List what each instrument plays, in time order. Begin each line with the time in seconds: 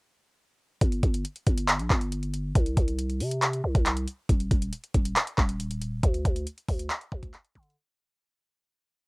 0.81 808-style bass G1, kick, closed hi-hat
0.92 closed hi-hat
1.03 808-style bass G1, kick, closed hi-hat
1.14 closed hi-hat
1.25 closed hi-hat
1.36 closed hi-hat
1.47 808-style bass G1, kick, closed hi-hat
1.58 closed hi-hat
1.68 clap, closed hi-hat
1.79 808-style bass A#1, closed hi-hat
1.90 808-style bass G1, kick, clap
2.01 closed hi-hat
2.12 closed hi-hat
2.23 closed hi-hat
2.34 closed hi-hat
2.55 808-style bass C2, kick, closed hi-hat
2.66 closed hi-hat
2.77 808-style bass C2, kick, closed hi-hat
2.88 closed hi-hat
2.99 closed hi-hat
3.10 closed hi-hat
3.20 808-style bass C3, open hi-hat
3.31 closed hi-hat
3.42 clap, closed hi-hat
3.53 closed hi-hat
3.64 808-style bass C2
3.75 808-style bass C2, kick, closed hi-hat
3.86 clap, closed hi-hat
3.97 closed hi-hat
4.08 closed hi-hat
4.29 808-style bass D#1, kick, closed hi-hat
4.40 closed hi-hat
4.51 808-style bass D#1, kick, closed hi-hat
4.62 closed hi-hat
4.73 closed hi-hat
4.84 closed hi-hat
4.94 808-style bass D#1, kick, closed hi-hat
5.05 closed hi-hat
5.16 clap, closed hi-hat
5.27 closed hi-hat
5.38 808-style bass D#1, kick, clap
5.49 closed hi-hat
5.60 closed hi-hat
5.71 closed hi-hat
5.81 closed hi-hat
6.03 808-style bass D2, kick, closed hi-hat
6.14 closed hi-hat
6.25 808-style bass D2, kick, closed hi-hat
6.36 closed hi-hat
6.47 closed hi-hat
6.58 closed hi-hat
6.68 808-style bass D2, kick, open hi-hat
6.79 closed hi-hat
6.90 clap, closed hi-hat
7.01 closed hi-hat
7.12 808-style bass D2, kick
7.23 kick, closed hi-hat
7.34 clap, closed hi-hat
7.45 closed hi-hat
7.55 808-style bass D3, kick, closed hi-hat
7.63 closed hi-hat
7.70 closed hi-hat